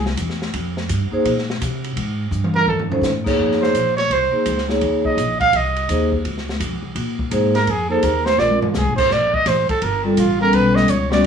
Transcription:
Already playing: upright bass C2
0.06 snare
0.17 upright bass E2, kick, hi-hat pedal, ride
0.30 snare
0.42 snare
0.54 upright bass F2, kick, ride
0.77 snare
0.89 upright bass G2, kick, hi-hat pedal, ride
1.11 vibraphone A#3 D#4 G#4 C5, muted upright bass stroke
1.25 upright bass A#2, kick, ride
1.38 snare
1.50 snare
1.61 upright bass C3, kick, hi-hat pedal, ride
1.84 ride
1.96 upright bass G#2, kick, ride
2.31 upright bass G2, hi-hat pedal
2.44 mid tom
2.55 trumpet A#4, mid tom
2.66 upright bass F2, trumpet A4, floor tom
2.79 floor tom
2.89 vibraphone C#4 D#4 A4 C5, floor tom
3.01 upright bass A2, snare, hi-hat pedal
3.24 vibraphone A#3 D#4 G#4 C#5, kick, crash
3.39 upright bass F2, kick
3.52 snare
3.61 trumpet C5, snare
3.74 upright bass A#1, kick, hi-hat pedal, ride
3.97 trumpet C#5, snare, ride
4.10 upright bass C2, trumpet C5, kick, ride
4.32 vibraphone A#3 D#4 G#4 C5, muted upright bass stroke
4.46 upright bass C#2, kick, hi-hat pedal, ride
4.58 snare
4.68 vibraphone A#3 D#4 G#4 C#5, snare
4.81 upright bass D#2, kick, ride
5.05 trumpet D#5, kick
5.17 upright bass A#1, kick, hi-hat pedal, ride
5.40 trumpet F5, kick, ride
5.53 upright bass C2, trumpet D#5, kick, ride
5.76 ride
5.88 upright bass D#2, vibraphone A#3 D#4 G#4 C5, kick, hi-hat pedal, ride
6.12 kick
6.25 upright bass C#2, kick, ride
6.38 snare
6.49 snare
6.60 upright bass F2, kick, hi-hat pedal, ride
6.71 upright bass C#2
6.82 upright bass C2
6.95 upright bass A#2, kick, ride
7.19 kick
7.31 upright bass G#2, vibraphone A#3 D#4 G#4 C5, kick, hi-hat pedal, ride
7.55 trumpet A#4, snare, ride
7.67 upright bass F2, trumpet G#4, kick, ride
7.89 vibraphone A#3 D#4 G#4 C5, trumpet A4
8.03 upright bass D#2, trumpet A#4, kick, hi-hat pedal, ride
8.25 trumpet C5, snare
8.37 upright bass A#1, vibraphone C4 F4 A#4 D5, trumpet D5, snare
8.51 high tom
8.61 trumpet F4, muted upright bass stroke, floor tom
8.74 upright bass C2, trumpet G#4, snare, hi-hat pedal
8.86 upright bass A#1
8.96 upright bass G#1, trumpet C5, kick, crash
9.11 upright bass A#1, trumpet D5, kick, snare
9.34 trumpet D#5, kick
9.46 upright bass A1, trumpet C5, kick, snare, hi-hat pedal, ride
9.69 trumpet A4, muted upright bass stroke, kick, ride
9.82 upright bass G1, trumpet A#4, kick, ride
10.03 vibraphone G3 C4 F4 A4, trumpet D4
10.17 upright bass A1, trumpet F4, kick, hi-hat pedal, ride
10.39 vibraphone G3 B3 C#4 A4, trumpet A#4
10.53 upright bass B1, trumpet B4, kick, ride
10.75 trumpet D#5, snare
10.88 upright bass C#2, trumpet C#5, kick, hi-hat pedal, ride
11.10 vibraphone G3 B3 C#4 F#4, trumpet D5, snare

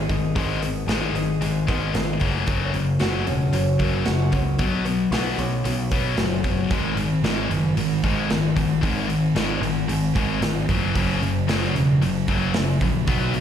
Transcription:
Already playing: steel-string acoustic guitar G#3 B3 G#4
0.09 picked electric bass G#1, distorted electric guitar G#2 D#3, steel-string acoustic guitar D#4, kick, open hi-hat
0.35 picked electric bass G#1, distorted electric guitar G#2 D#3 G#3, steel-string acoustic guitar G#2, kick, open hi-hat
0.61 distorted electric guitar G#2 D#3, steel-string acoustic guitar B3, open hi-hat
0.87 picked electric bass G#1, distorted electric guitar G#2 D#3 G#3, steel-string acoustic guitar G#4, snare, open hi-hat
1.14 picked electric bass G#1, distorted electric guitar G#2 D#3, steel-string acoustic guitar D#4, open hi-hat
1.41 picked electric bass G#1, distorted electric guitar G#2 D#3, steel-string acoustic guitar G#3, open hi-hat
1.67 picked electric bass G#1, distorted electric guitar G#2 D#3 G#3, steel-string acoustic guitar B3, kick, open hi-hat
1.94 picked electric bass G#1, distorted electric guitar G#2 D#3, steel-string acoustic guitar G#4, snare, open hi-hat
2.20 picked electric bass F#1, steel-string acoustic guitar F#2, distorted electric guitar F#2 C#3 F#3, kick, open hi-hat
2.47 picked electric bass F#1, steel-string acoustic guitar F#2, distorted electric guitar F#2 C#3 F#3, kick, open hi-hat
2.74 picked electric bass F#1, distorted electric guitar F#2 C#3, steel-string acoustic guitar A#3, open hi-hat
3.00 picked electric bass F#1, distorted electric guitar F#2 C#3 F#3, steel-string acoustic guitar F#4, snare, open hi-hat
3.26 picked electric bass E1, distorted electric guitar F#2 C#3, steel-string acoustic guitar C#4, open hi-hat
3.53 picked electric bass F#1, distorted electric guitar F#2 C#3, steel-string acoustic guitar F#3, open hi-hat
3.79 picked electric bass F#1, distorted electric guitar F#2 C#3 F#3, steel-string acoustic guitar A#3, kick, open hi-hat
4.05 picked electric bass F#1, distorted electric guitar F#2 C#3, steel-string acoustic guitar F#4, snare, open hi-hat
4.32 picked electric bass C#2, distorted electric guitar F#2 C#3, steel-string acoustic guitar C#4, kick, open hi-hat
4.58 picked electric bass B1, steel-string acoustic guitar B2, distorted electric guitar B2 F#3 B3, kick, open hi-hat
4.85 distorted electric guitar B2 F#3, steel-string acoustic guitar B3, open hi-hat
5.11 picked electric bass B1, distorted electric guitar B2 F#3 B3, steel-string acoustic guitar F#4, snare, open hi-hat
5.38 picked electric bass B1, distorted electric guitar B2 F#3, steel-string acoustic guitar C#4, open hi-hat
5.64 picked electric bass B1, distorted electric guitar B2 F#3, steel-string acoustic guitar F#3, open hi-hat
5.91 picked electric bass B1, distorted electric guitar B2 F#3 B3, steel-string acoustic guitar B3, kick, open hi-hat
6.16 picked electric bass F#1, distorted electric guitar B2 F#3, steel-string acoustic guitar F#4, snare, open hi-hat
6.44 distorted electric guitar B2 F#3, steel-string acoustic guitar C#4, kick, open hi-hat
6.71 picked electric bass G#1, distorted electric guitar G#2 D#3 G#3, kick, open hi-hat
6.96 picked electric bass G#1, distorted electric guitar G#2 D#3, open hi-hat
7.22 picked electric bass G#1, distorted electric guitar G#2 D#3 G#3, snare, open hi-hat
7.49 picked electric bass F#1, distorted electric guitar G#2 D#3, open hi-hat
7.76 picked electric bass G#1, distorted electric guitar G#2 D#3, open hi-hat
8.03 picked electric bass G#1, distorted electric guitar G#2 D#3 G#3, kick, open hi-hat
8.30 picked electric bass G#1, distorted electric guitar G#2 D#3, snare, open hi-hat
8.56 picked electric bass G#1, distorted electric guitar G#2 D#3, kick, open hi-hat
8.81 picked electric bass G#1, distorted electric guitar G#2 D#3 G#3, kick, open hi-hat
9.08 distorted electric guitar G#2 D#3, open hi-hat
9.35 picked electric bass G#1, distorted electric guitar G#2 D#3 G#3, snare, open hi-hat
9.61 picked electric bass G#1, distorted electric guitar G#2 D#3, open hi-hat
9.87 picked electric bass G#1, distorted electric guitar G#2 D#3, open hi-hat
10.15 picked electric bass G#1, distorted electric guitar G#2 D#3 G#3, kick, open hi-hat
10.41 picked electric bass G#1, distorted electric guitar G#2 D#3, snare, open hi-hat
10.69 picked electric bass F#1, distorted electric guitar F#2 C#3 F#3, kick, open hi-hat
10.95 picked electric bass F#1, distorted electric guitar F#2 C#3 F#3, kick, open hi-hat
11.21 picked electric bass F#1, distorted electric guitar F#2 C#3, open hi-hat
11.48 picked electric bass F#1, distorted electric guitar F#2 C#3 F#3, snare, open hi-hat
11.73 picked electric bass E1, distorted electric guitar F#2 C#3, open hi-hat
12.00 picked electric bass F#1, distorted electric guitar F#2 C#3, open hi-hat
12.28 picked electric bass F#1, distorted electric guitar F#2 C#3 F#3, kick, open hi-hat
12.54 picked electric bass F#1, distorted electric guitar F#2 C#3, snare, open hi-hat
12.81 picked electric bass A#1, distorted electric guitar F#2 C#3, kick, open hi-hat
13.07 picked electric bass B1, distorted electric guitar B2 F#3 B3, kick, open hi-hat
13.34 distorted electric guitar B2 F#3, open hi-hat

